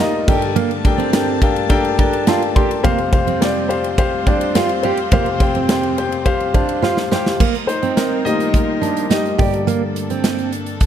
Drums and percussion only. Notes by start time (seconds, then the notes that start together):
0.28 kick, snare, crash
0.42 ride
0.56 ride
0.71 ride
0.85 kick, ride
0.99 ride
1.13 snare, ride
1.42 kick, ride
1.56 ride
1.70 kick, ride
1.85 ride
1.99 kick, ride
2.13 ride
2.27 snare, ride
2.42 ride
2.56 kick, ride
2.71 ride
2.85 kick, ride
2.98 ride
3.13 kick, ride
3.28 ride
3.42 snare, ride
3.70 ride
3.84 ride
3.98 kick, ride
4.27 kick, ride
4.41 ride
4.55 snare, ride
4.69 ride
4.83 ride
4.97 ride
5.12 kick, ride
5.26 ride
5.40 kick, ride
5.55 ride
5.69 snare, ride
5.83 ride
5.98 ride
6.12 ride
6.26 kick, ride
6.40 ride
6.54 kick, ride
6.69 ride
6.83 snare
6.97 snare
7.12 snare
7.26 snare
7.40 kick, crash
7.55 closed hi-hat
7.69 closed hi-hat
7.83 closed hi-hat
7.97 snare, closed hi-hat
8.26 closed hi-hat
8.40 closed hi-hat
8.54 kick, closed hi-hat
8.83 closed hi-hat
8.97 closed hi-hat
9.11 snare, closed hi-hat
9.25 closed hi-hat
9.39 kick, open hi-hat
9.53 closed hi-hat
9.68 closed hi-hat
9.96 closed hi-hat
10.10 closed hi-hat
10.24 snare, closed hi-hat
10.38 closed hi-hat
10.52 closed hi-hat
10.66 closed hi-hat
10.80 kick, closed hi-hat